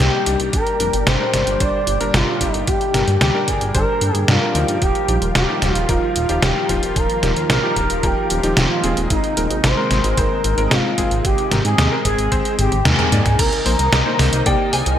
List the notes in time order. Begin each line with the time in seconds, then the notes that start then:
Already playing: C3 G3 A#3 D#4 G4 C5
0.00 G4, snare, closed hi-hat
0.26 C2 G3 D4 G4, closed hi-hat
0.40 C2, closed hi-hat
0.53 G1 A#2 D3 D4 A#4, kick, closed hi-hat
0.67 closed hi-hat
0.80 F1 G3 D4 A#4, closed hi-hat
0.93 G1, closed hi-hat
1.07 G1 C5, snare, closed hi-hat
1.20 G3 D4 A#4
1.34 G1, snare, closed hi-hat
1.47 G1, closed hi-hat
1.60 G1 G3 D4 C5 D5, kick, closed hi-hat
1.87 G1, closed hi-hat
2.01 G1 G3 D4 A#4, closed hi-hat
2.14 G1 F4, snare, closed hi-hat
2.41 G1 G3 D4 G4, kick, closed hi-hat
2.53 G1 D#4, closed hi-hat
2.67 G1 G4, kick, closed hi-hat
2.81 closed hi-hat
2.94 G1 G3 D4 A#4, snare, closed hi-hat
3.08 G2, closed hi-hat
3.21 D2 G4, snare, closed hi-hat
3.35 G3 D4 A#4
3.48 G1 G#4, kick, closed hi-hat
3.61 G1, closed hi-hat
3.75 G1 G3 D4 A#4 C5, kick, closed hi-hat
4.01 G2, closed hi-hat
4.14 G2 G#4, closed hi-hat
4.28 G2 G3 D4 F4 A#4, snare, closed hi-hat
4.42 G3 D4 A#4
4.55 D2 F3 D#4 A#4, closed hi-hat
4.68 G2, closed hi-hat
4.82 D#1 D#3 F3 A#3 F4 G4, kick, closed hi-hat
4.95 closed hi-hat
5.08 A#1 F3 D#4 G4, closed hi-hat
5.22 D#1, closed hi-hat
5.35 D#1 G4, snare, closed hi-hat
5.49 F3 D#4 G4
5.62 D#1, snare, closed hi-hat
5.75 D#1 F4, closed hi-hat
5.89 D#1 F3 D#4 F4 A#4, kick, closed hi-hat
6.16 D#1, closed hi-hat
6.29 D#1 F3 D#4 G4, closed hi-hat
6.42 D#1 G4, snare, closed hi-hat
6.69 D#1 F3 D#4 F4, kick, closed hi-hat
6.83 D#1, closed hi-hat
6.96 D#1 A#4, kick, closed hi-hat
7.10 closed hi-hat
7.23 D#1 F3 D#4 G4, snare, closed hi-hat
7.36 D#2, closed hi-hat
7.50 A#1 A#4, snare, closed hi-hat
7.63 F3 D#4 G4
7.76 D#1, kick, closed hi-hat
7.90 D#1, closed hi-hat
8.03 D#1 F3 D#4 G4 A#4, kick, closed hi-hat
8.30 D#1, closed hi-hat
8.43 D#1 F3 D#4 G4, closed hi-hat
8.57 D#1 F4, snare, closed hi-hat
8.84 D#1 G#3 C4 G#4, closed hi-hat
8.97 D#1, closed hi-hat
9.10 G#1 C3 G#3 D#4, kick, closed hi-hat
9.24 closed hi-hat
9.37 D#1 G#3 C4 A#4, closed hi-hat
9.51 G#1, closed hi-hat
9.64 G#1 C5, snare, closed hi-hat
9.77 G#3 C4 A#4
9.91 G#1, snare, closed hi-hat
10.04 G#1, closed hi-hat
10.17 G#1 G#3 C4 A#4 C5, kick, closed hi-hat
10.44 G#1, closed hi-hat
10.58 G#1 G#3 C4 A#4, closed hi-hat
10.71 G#1 F4, snare, closed hi-hat
10.98 G#1 G#3 C4 G#4, kick, closed hi-hat
11.11 G#1, closed hi-hat
11.25 G#1 C4 G4, kick, closed hi-hat
11.38 closed hi-hat
11.51 G#1 G#3 C4 A#4, snare, closed hi-hat
11.65 G#2 G#4, closed hi-hat
11.78 D#2, snare, closed hi-hat
11.92 G#3 C4 A#4
12.05 G#1 G#4, kick, closed hi-hat
12.18 G#1, closed hi-hat
12.32 G#1 G#3 C4 C5, kick, closed hi-hat
12.45 closed hi-hat
12.59 G#1 G4, closed hi-hat, high tom
12.72 G#1, closed hi-hat, high tom
12.85 D#2 G#3 C4 G#4 A#4, snare, closed hi-hat, mid tom
12.99 G#3 C4 A#4, closed hi-hat, mid tom
13.12 G#2 A#3 D#4 D5, closed hi-hat
13.26 G#2, closed hi-hat, mid tom
13.39 C2 C3 D#3 A#3 D#4 A#4 A#5, kick, closed hi-hat, crash
13.53 closed hi-hat
13.66 A#1 A#3 D#4 C5, open hi-hat
13.79 C2, closed hi-hat
13.93 C2, snare, closed hi-hat
14.06 A#3 D#4 C5
14.19 C2, snare, open hi-hat
14.33 C2, closed hi-hat
14.46 C2 A#3 D#4 G4 D5 G5, kick, closed hi-hat
14.73 C2 G#4 G#5, open hi-hat
14.86 C2, closed hi-hat